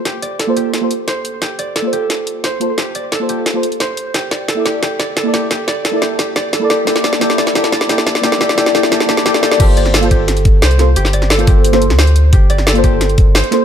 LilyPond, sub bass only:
\new Staff \with { instrumentName = "Sub bass" } { \clef bass \time 4/4 \key g \dorian \tempo 4 = 176 g,,2~ g,,8. d,4~ d,16 | g,,2~ g,,8 f,,16 g,,8 r8. | g,,2. g,8 c,8 | c,2. e,4 |
c,2~ c,8. g,,4~ g,,16 | r1 | r2. g,,4 | g,,2. c,4 |
g,,2~ g,,8. d,4~ d,16 | g,,2~ g,,8 f,,16 g,,8 r8. | }